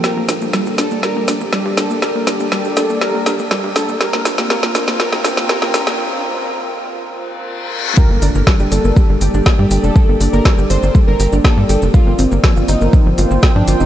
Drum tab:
HH |--o---o---o---o-|--o---o---o---o-|--o---o---o---o-|----------------|
SH |x-xxxxxxx-xxx-xx|x-xxxxxxx-xxx-xx|x-xxxxxxx-xxx-xx|----------------|
SD |o-o-o-o-o-o-o-o-|o-o-o-o-o-o-o-o-|oooooooooooooooo|----------------|
BD |----------------|----------------|----------------|----------------|

HH |--o---o---o---o-|--o---o---o---o-|--o---o---o---o-|
SH |x-xxxxxxx-xxx-xx|x-xxxxxxx-xxx-xx|x-xxxxxxx-xxx-xx|
SD |----o-------o---|----o-------o---|----o-------o---|
BD |o---o---o---o---|o---o---o---o---|o---o---o---o---|